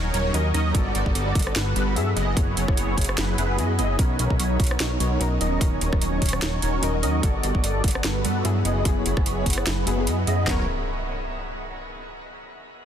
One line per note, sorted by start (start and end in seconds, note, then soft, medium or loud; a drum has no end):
0.00 0.12 D#1 medium
0.00 0.12 F#3 medium
0.00 0.31 F#3 medium
0.00 0.12 C#4 medium
0.00 0.32 C#4 medium
0.00 0.12 D#4 medium
0.00 0.32 D#4 medium
0.00 0.12 A#4 medium
0.00 0.33 A#4 medium
0.00 0.73 A#4 medium
0.00 0.12 C#5 medium
0.00 0.71 D#5 medium
0.00 2.13 F#5 medium
0.00 0.73 C#6 medium
0.14 0.32 D#1 loud
0.14 0.32 F#3 loud
0.14 0.32 C#4 medium
0.14 0.32 D#4 medium
0.14 0.32 A#4 medium
0.14 0.32 C#5 loud
0.14 closed hi-hat medium
0.33 0.52 D#2 medium
0.33 0.72 F#3 medium
0.33 0.47 F#3 medium
0.33 0.72 C#4 medium
0.33 0.47 C#4 medium
0.33 0.47 D#4 medium
0.33 0.73 D#4 medium
0.33 0.47 A#4 medium
0.33 0.73 A#4 loud
0.33 0.47 D#5 medium
0.33 closed hi-hat medium
0.54 0.73 D#2 loud
0.54 0.72 F#3 loud
0.54 0.72 C#4 medium
0.54 0.72 D#4 medium
0.54 0.72 A#4 medium
0.54 0.72 D#5 loud
0.54 closed hi-hat medium
0.73 0.93 G1 loud
0.73 1.93 G3 medium
0.73 0.93 G3 medium
0.73 1.94 B3 medium
0.73 0.93 B3 medium
0.73 0.93 F#4 medium
0.73 1.94 F#4 medium
0.73 0.93 A4 medium
0.73 0.93 D5 loud
0.73 kick loud
0.73 closed hi-hat medium
0.77 1.95 A4 medium
0.95 1.04 G1 loud
0.95 1.03 G3 medium
0.95 1.03 B3 medium
0.95 1.03 F#4 medium
0.95 1.03 A4 medium
0.95 1.03 D5 loud
0.95 closed hi-hat medium
1.06 1.13 G1 loud
1.06 1.13 G3 medium
1.06 1.13 B3 medium
1.06 1.13 F#4 medium
1.06 1.13 A4 medium
1.06 1.13 D5 loud
1.06 kick medium
1.15 1.34 G1 loud
1.15 1.33 G3 medium
1.15 1.33 B3 medium
1.15 1.33 F#4 medium
1.15 1.33 A4 medium
1.15 1.33 D5 loud
1.15 closed hi-hat medium
1.35 1.54 G1 loud
1.35 1.54 G3 medium
1.35 1.54 B3 medium
1.35 1.54 F#4 medium
1.35 1.54 A4 medium
1.35 1.54 D5 medium
1.35 kick loud
1.35 closed hi-hat medium
1.39 closed hi-hat medium
1.42 closed hi-hat medium
1.47 cross-stick medium
1.56 1.74 G1 medium
1.56 1.74 G3 medium
1.56 1.74 B3 medium
1.56 1.74 F#4 medium
1.56 1.74 A4 medium
1.56 1.74 B4 medium
1.56 snare loud
1.56 closed hi-hat medium
1.76 1.98 G1 loud
1.76 1.94 G3 loud
1.76 1.94 B3 medium
1.76 1.94 F#4 medium
1.76 1.94 A4 medium
1.76 1.94 B4 loud
1.76 closed hi-hat medium
1.95 2.15 G2 medium
1.95 2.33 F#3 medium
1.95 2.10 G3 medium
1.95 2.34 B3 medium
1.95 2.10 B3 medium
1.95 2.35 E4 medium
1.95 2.10 F#4 medium
1.95 2.35 G#4 loud
1.95 2.10 A4 medium
1.95 2.10 E5 medium
1.95 closed hi-hat medium
2.16 2.35 F#1 loud
2.16 2.35 F#3 medium
2.16 2.34 B3 medium
2.16 2.34 E4 medium
2.16 2.34 G#4 medium
2.16 3.97 G#4 medium
2.16 2.34 D#5 loud
2.16 3.97 E5 medium
2.16 3.97 F#5 medium
2.16 3.97 B5 medium
2.16 closed hi-hat medium
2.35 2.55 F#1 loud
2.35 3.55 F#3 medium
2.35 2.55 F#3 medium
2.35 3.56 B3 medium
2.35 2.55 B3 medium
2.35 2.55 E4 medium
2.35 3.57 E4 medium
2.35 2.55 G#4 medium
2.35 2.55 C#5 medium
2.35 kick loud
2.35 closed hi-hat medium
2.39 3.57 G#4 medium
2.57 2.66 F#1 medium
2.57 2.66 F#3 medium
2.57 2.66 B3 medium
2.57 2.66 E4 medium
2.57 2.66 G#4 medium
2.57 2.66 C#5 loud
2.57 closed hi-hat medium
2.68 2.75 F#1 loud
2.68 2.75 F#3 loud
2.68 2.75 B3 medium
2.68 2.75 E4 medium
2.68 2.75 G#4 medium
2.68 2.75 C#5 loud
2.68 kick loud
2.68 cross-stick medium
2.77 2.96 F#1 medium
2.77 2.95 F#3 medium
2.77 2.95 B3 medium
2.77 2.95 E4 medium
2.77 2.95 G#4 medium
2.77 2.95 C#5 loud
2.77 closed hi-hat medium
2.97 3.16 F#1 medium
2.97 3.16 F#3 medium
2.97 3.16 B3 medium
2.97 3.16 E4 medium
2.97 3.16 G#4 medium
2.97 3.16 C#5 loud
2.97 kick medium
2.97 closed hi-hat soft
3.01 closed hi-hat medium
3.04 closed hi-hat medium
3.09 cross-stick medium
3.18 3.36 F#1 medium
3.18 3.36 F#3 medium
3.18 3.36 B3 medium
3.18 3.36 E4 medium
3.18 3.36 G#4 medium
3.18 3.36 B4 loud
3.18 snare loud
3.18 closed hi-hat medium
3.38 3.60 F#1 medium
3.38 3.56 F#3 loud
3.38 3.56 B3 medium
3.38 3.56 E4 medium
3.38 3.56 G#4 medium
3.38 3.56 B4 loud
3.38 closed hi-hat medium
3.57 3.80 F#2 medium
3.57 3.96 F#3 medium
3.57 3.72 F#3 medium
3.57 3.96 B3 medium
3.57 3.72 B3 medium
3.57 3.97 E4 medium
3.57 3.72 E4 medium
3.57 3.72 G#4 medium
3.57 3.97 G#4 loud
3.57 3.72 D#5 medium
3.57 closed hi-hat medium
3.79 3.97 F#1 medium
3.79 3.97 F#3 loud
3.79 3.97 B3 medium
3.79 3.97 E4 medium
3.79 3.97 G#4 medium
3.79 3.97 D#5 loud
3.79 closed hi-hat medium
3.97 4.17 B1 loud
3.97 5.17 D#3 medium
3.97 4.17 F#3 medium
3.97 5.18 B3 medium
3.97 4.17 B3 medium
3.97 5.19 C#4 medium
3.97 4.17 D#4 medium
3.97 4.17 A#4 medium
3.97 5.19 A#4 medium
3.97 4.17 C#5 medium
3.97 kick loud
3.97 closed hi-hat medium
4.19 4.28 B1 medium
4.19 4.28 F#3 medium
4.19 4.28 B3 medium
4.19 4.28 D#4 medium
4.19 4.28 A#4 medium
4.19 4.28 C#5 medium
4.19 closed hi-hat medium
4.30 4.38 B1 medium
4.30 4.37 F#3 medium
4.30 4.37 B3 medium
4.30 4.37 D#4 medium
4.30 4.37 A#4 medium
4.30 4.37 C#5 loud
4.30 kick medium
4.39 4.58 B1 loud
4.39 4.58 F#3 loud
4.39 4.58 B3 medium
4.39 4.58 D#4 medium
4.39 4.58 A#4 medium
4.39 4.58 C#5 loud
4.39 closed hi-hat medium
4.59 4.78 B1 medium
4.59 4.78 F#3 medium
4.59 4.78 B3 medium
4.59 4.78 D#4 medium
4.59 4.78 A#4 medium
4.59 4.78 C#5 loud
4.59 kick loud
4.59 closed hi-hat soft
4.64 closed hi-hat medium
4.67 closed hi-hat medium
4.71 cross-stick medium
4.80 4.98 B1 medium
4.80 4.98 F#3 medium
4.80 4.98 B3 medium
4.80 4.98 D#4 medium
4.80 4.98 A#4 medium
4.80 4.98 C#5 medium
4.80 snare loud
4.80 closed hi-hat medium
5.00 5.19 B1 loud
5.00 5.18 F#3 loud
5.00 5.18 B3 medium
5.00 5.18 D#4 medium
5.00 5.18 A#4 loud
5.00 5.18 C#5 loud
5.00 closed hi-hat medium
5.19 5.39 B1 medium
5.19 5.58 F#3 medium
5.19 5.34 F#3 medium
5.19 5.34 B3 medium
5.19 5.59 C#4 medium
5.19 5.34 D#4 medium
5.19 5.59 D#4 medium
5.19 5.34 A#4 medium
5.19 5.59 A#4 loud
5.19 5.34 D#5 medium
5.19 closed hi-hat medium
5.41 5.59 D#1 medium
5.41 5.59 F#3 loud
5.41 5.59 C#4 medium
5.41 5.59 D#4 medium
5.41 5.59 A#4 medium
5.41 7.21 A#4 medium
5.41 5.59 D#5 loud
5.41 7.22 D#5 medium
5.41 8.62 F#5 medium
5.41 7.22 C#6 medium
5.41 closed hi-hat medium
5.59 5.80 D#1 loud
5.59 6.79 F#3 medium
5.59 5.79 F#3 medium
5.59 6.80 C#4 medium
5.59 5.79 C#4 medium
5.59 5.79 D#4 medium
5.59 6.81 D#4 medium
5.59 5.79 A#4 medium
5.59 5.79 C#5 medium
5.59 kick loud
5.59 closed hi-hat medium
5.63 6.81 A#4 medium
5.81 5.90 D#1 loud
5.81 5.90 F#3 medium
5.81 5.90 C#4 medium
5.81 5.90 D#4 medium
5.81 5.90 A#4 medium
5.81 5.90 C#5 medium
5.81 closed hi-hat medium
5.93 6.00 D#1 medium
5.93 5.99 F#3 loud
5.93 5.99 C#4 medium
5.93 5.99 D#4 medium
5.93 5.99 A#4 medium
5.93 5.99 C#5 loud
5.93 kick loud
5.93 cross-stick medium
6.01 6.20 D#1 loud
6.01 6.20 F#3 loud
6.01 6.20 C#4 medium
6.01 6.20 D#4 medium
6.01 6.20 A#4 medium
6.01 6.20 C#5 loud
6.01 closed hi-hat medium
6.22 6.40 D#1 loud
6.22 6.40 F#3 medium
6.22 6.40 C#4 medium
6.22 6.40 D#4 medium
6.22 6.40 A#4 medium
6.22 6.40 C#5 loud
6.22 kick medium
6.22 closed hi-hat soft
6.26 closed hi-hat medium
6.29 closed hi-hat medium
6.33 cross-stick medium
6.42 6.61 D#1 loud
6.42 6.60 F#3 medium
6.42 6.60 C#4 medium
6.42 6.60 D#4 medium
6.42 6.60 A#4 medium
6.42 6.60 C#5 medium
6.42 snare loud
6.42 closed hi-hat medium
6.62 6.81 D#1 loud
6.62 6.81 F#3 loud
6.62 6.81 C#4 medium
6.62 6.81 D#4 medium
6.62 6.81 A#4 medium
6.62 6.81 C#5 loud
6.62 closed hi-hat medium
6.82 7.04 D#1 medium
6.82 7.21 F#3 medium
6.82 6.96 F#3 medium
6.82 7.21 C#4 medium
6.82 6.96 C#4 medium
6.82 6.96 D#4 medium
6.82 7.21 D#4 medium
6.82 6.96 A#4 medium
6.82 7.22 A#4 loud
6.82 6.96 D#5 medium
6.82 closed hi-hat medium
7.03 7.21 D#2 loud
7.03 7.21 F#3 loud
7.03 7.21 C#4 loud
7.03 7.21 D#4 medium
7.03 7.21 A#4 medium
7.03 7.21 D#5 loud
7.03 closed hi-hat medium
7.21 7.42 G1 loud
7.21 8.42 G3 medium
7.21 7.41 G3 medium
7.21 8.42 B3 medium
7.21 7.41 B3 medium
7.21 7.41 F#4 medium
7.21 8.43 F#4 medium
7.21 7.41 A4 medium
7.21 8.44 A4 medium
7.21 7.41 D5 loud
7.21 10.44 B5 medium
7.21 kick loud
7.21 closed hi-hat medium
7.43 7.53 G1 loud
7.43 7.52 G3 medium
7.43 7.52 B3 medium
7.43 7.52 F#4 medium
7.43 7.52 A4 medium
7.43 7.52 D5 medium
7.43 closed hi-hat medium
7.55 7.62 G1 loud
7.55 7.61 G3 medium
7.55 7.61 B3 medium
7.55 7.61 F#4 medium
7.55 7.61 A4 medium
7.55 7.61 D5 loud
7.55 kick medium
7.64 7.82 G1 medium
7.64 7.82 G3 medium
7.64 7.82 B3 medium
7.64 7.82 F#4 medium
7.64 7.82 A4 medium
7.64 7.82 D5 loud
7.64 closed hi-hat medium
7.84 8.03 G1 loud
7.84 8.02 G3 medium
7.84 8.02 B3 medium
7.84 8.02 F#4 medium
7.84 8.02 A4 medium
7.84 8.02 D5 loud
7.84 kick medium
7.84 closed hi-hat medium
7.88 closed hi-hat medium
7.91 closed hi-hat medium
7.95 cross-stick medium
8.04 8.26 G1 medium
8.04 8.22 G3 medium
8.04 8.22 B3 medium
8.04 8.22 F#4 medium
8.04 8.22 A4 medium
8.04 8.22 B4 medium
8.04 snare loud
8.04 closed hi-hat medium
8.24 8.43 G2 loud
8.24 8.43 G3 loud
8.24 8.43 B3 medium
8.24 8.43 F#4 medium
8.24 8.43 A4 medium
8.24 8.43 B4 loud
8.24 closed hi-hat medium
8.44 8.63 G2 loud
8.44 8.82 F#3 medium
8.44 8.58 G3 medium
8.44 8.83 B3 medium
8.44 8.58 B3 medium
8.44 8.83 E4 medium
8.44 8.58 F#4 medium
8.44 8.84 G#4 loud
8.44 8.58 A4 medium
8.44 8.58 E5 medium
8.44 closed hi-hat medium
8.65 8.84 F#1 loud
8.65 8.83 F#3 loud
8.65 8.83 B3 loud
8.65 8.83 E4 medium
8.65 8.83 G#4 medium
8.65 10.46 G#4 medium
8.65 8.83 D#5 loud
8.65 10.46 E5 medium
8.65 10.46 F#5 medium
8.65 closed hi-hat medium
8.83 9.04 F#1 loud
8.83 9.84 F#3 medium
8.83 9.03 F#3 medium
8.83 9.85 B3 medium
8.83 9.03 B3 medium
8.83 9.03 E4 medium
8.83 9.85 E4 medium
8.83 9.03 G#4 medium
8.83 9.03 C#5 loud
8.83 kick loud
8.83 closed hi-hat medium
8.88 9.86 G#4 medium
9.06 9.15 F#1 loud
9.06 9.14 F#3 medium
9.06 9.14 B3 medium
9.06 9.14 E4 medium
9.06 9.14 G#4 medium
9.06 9.14 C#5 loud
9.06 closed hi-hat medium
9.17 9.24 F#1 medium
9.17 9.24 F#3 medium
9.17 9.24 B3 medium
9.17 9.24 E4 medium
9.17 9.24 G#4 medium
9.17 9.24 C#5 loud
9.17 kick loud
9.17 cross-stick medium
9.26 9.44 F#1 loud
9.26 9.44 F#3 medium
9.26 9.44 B3 medium
9.26 9.44 E4 medium
9.26 9.44 G#4 medium
9.26 9.44 C#5 loud
9.26 closed hi-hat medium
9.46 9.65 F#1 loud
9.46 9.64 F#3 medium
9.46 9.64 B3 medium
9.46 9.64 E4 medium
9.46 9.64 G#4 medium
9.46 9.64 C#5 medium
9.46 kick medium
9.46 closed hi-hat medium
9.50 closed hi-hat medium
9.53 closed hi-hat medium
9.58 cross-stick medium
9.66 9.85 F#1 loud
9.66 9.85 F#3 medium
9.66 9.85 B3 medium
9.66 9.85 E4 medium
9.66 9.85 G#4 medium
9.66 9.85 B4 medium
9.66 snare loud
9.66 closed hi-hat medium
9.86 10.09 F#1 loud
9.86 9.95 F#3 medium
9.86 10.05 F#3 loud
9.86 9.95 B3 medium
9.86 10.05 B3 medium
9.86 10.05 E4 medium
9.86 9.95 E4 medium
9.86 10.05 G#4 medium
9.86 9.96 G#4 medium
9.86 10.05 B4 loud
9.86 closed hi-hat medium
9.96 10.44 F#3 medium
9.96 10.45 B3 medium
9.96 10.46 E4 medium
10.00 10.46 G#4 medium
10.07 10.26 F#2 loud
10.07 10.21 F#3 medium
10.07 10.21 B3 medium
10.07 10.21 E4 medium
10.07 10.21 G#4 medium
10.07 10.21 D#5 medium
10.07 closed hi-hat medium
10.27 10.46 F#2 loud
10.27 10.45 F#3 loud
10.27 10.45 B3 medium
10.27 10.45 E4 medium
10.27 10.45 G#4 medium
10.27 10.45 D#5 loud
10.27 closed hi-hat medium
10.45 10.66 B1 loud
10.45 10.62 D#3 medium
10.45 10.63 F#3 medium
10.45 10.63 B3 medium
10.45 10.64 C#4 medium
10.45 10.63 D#4 medium
10.45 10.63 A#4 medium
10.45 10.63 C#5 loud
10.45 snare loud
10.45 clap loud
10.45 floor tom loud
10.45 impact medium
10.51 10.65 A#4 loud